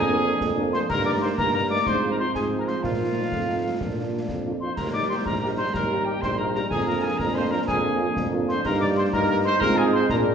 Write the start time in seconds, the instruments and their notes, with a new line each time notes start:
Already playing: tuba F2, trombone section A#3 D4, trumpet section G#4, piccolo G#5
0.08 french horn section A#3 D4 A#4
0.24 french horn section A#3 D4 A#4
0.41 tuba F2, concert bass drum, snare
0.57 french horn section A#3 D4 A#4
0.72 french horn section A#3 D4 A#4, trumpet section C5, piccolo C6, snare
0.88 tuba G2, trombone section A#3 D#4, trumpet section A#4, piccolo A#5, concert bass drum, snare, crash
1.05 french horn section A#3 D#4 A#4, trumpet section D5, piccolo D6
1.21 french horn section A#3 D#4 A#4, trumpet section C5, piccolo C6
1.38 tuba G2, trumpet section A#4, piccolo A#5, concert bass drum, snare
1.54 french horn section A#3 D#4 A#4, trumpet section A#4, piccolo A#5
1.70 french horn section A#3 D#4 A#4, trumpet section D5, piccolo D6
1.86 tuba G#2, trombone section F3 C4, trumpet section C5, piccolo C6, concert bass drum, snare
2.02 french horn section G#3 C4 F4
2.11 trumpet section A#4, piccolo A#5
2.18 french horn section G#3 C4 F4, trumpet section C5, piccolo C6
2.34 tuba G#2, trumpet section G#4, piccolo G#5, concert bass drum, snare
2.51 french horn section G#3 C4 F4
2.59 trumpet section A#4, piccolo A#5
2.67 french horn section G#3 C4 F4, trumpet section C5, piccolo C6, snare
2.83 tuba A#2, trombone section D#4, trumpet section F4, piccolo F5, concert bass drum, snare
3.00 french horn section F3 D#4 F4
3.15 french horn section F3 D#4 F4
3.32 tuba F2, concert bass drum, snare
3.48 french horn section F3 D#4 F4
3.64 french horn section F3 D#4 F4
3.80 tuba A#2, trombone section F3 D4, concert bass drum, snare
3.97 french horn section A#3 D4 F4
4.13 french horn section A#3 D4 F4
4.29 tuba F2, concert bass drum, snare
4.45 french horn section A#3 D4 F4
4.61 french horn section A#3 D4 F4, trumpet section C5, piccolo C6
4.77 tuba D#2, trombone section G3 D#4, trumpet section A#4, piccolo A#5, concert bass drum, snare, crash
4.93 french horn section A#3 D#4 G4, trumpet section D5, piccolo D6
5.09 french horn section A#3 D#4 G4, trumpet section C5, piccolo C6
5.25 tuba A#1, trumpet section A#4, piccolo A#5, concert bass drum, snare
5.41 french horn section A#3 D#4 G4, trumpet section A#4, piccolo A#5
5.57 french horn section A#3 D#4 G4, trumpet section C5, piccolo C6
5.74 tuba D#2, trumpet section A#4, piccolo A#5, concert bass drum, snare
5.90 french horn section A#3 D#4 G4
6.05 french horn section A#3 D#4 G4, trumpet section G4, piccolo G5
6.21 tuba A#1, trumpet section C5, piccolo C6, concert bass drum, snare
6.38 french horn section A#3 D#4 G4, trumpet section A#4, piccolo A#5
6.54 french horn section A#3 D#4 G4, trumpet section A#4, piccolo A#5, snare
6.70 tuba F2, trombone section A#3 D4, trumpet section G#4, piccolo G#5, concert bass drum, snare
6.86 french horn section A#3 D4 F4, trumpet section A#4, piccolo A#5
7.02 french horn section A#3 D4 F4, trumpet section G#4, piccolo G#5
7.18 tuba F2, trumpet section A#4, piccolo A#5, concert bass drum, snare
7.34 french horn section A#3 D4 F4, trumpet section C5, piccolo C6
7.51 french horn section A#3 D4 F4, trumpet section A#4, piccolo A#5
7.67 tuba F2, trumpet section G#4, piccolo G#5, concert bass drum, snare
7.84 french horn section A#3 D4 F4
8.00 french horn section A#3 D4 F4
8.16 tuba F2, concert bass drum, snare
8.32 french horn section A#3 D4 F4
8.48 french horn section A#3 D4 F4, trumpet section C5, piccolo C6, snare
8.64 tuba G2, trombone section G3 D#4, french horn section A#3 D#4, trumpet section A#4, piccolo A#5, concert bass drum, snare, crash
8.80 trumpet section D5, piccolo D6
8.97 trumpet section C5, piccolo C6
9.13 tuba G2, french horn section A#3 D#4, trumpet section A#4, piccolo A#5, concert bass drum, snare
9.29 trumpet section A#4, piccolo A#5
9.45 trumpet section C5, piccolo C6
9.60 tuba G#2, trombone section G#3 F4, french horn section C4 F4 G#4, trumpet section A#4, piccolo A#5, concert bass drum, snare
9.77 trumpet section G#4, piccolo G#5
9.85 french horn section D#4
9.92 trumpet section C5, piccolo C6
10.09 tuba A#2, french horn section A#3 D4 G#4, trombone section D4, trumpet section A#4, piccolo A#5, concert bass drum, snare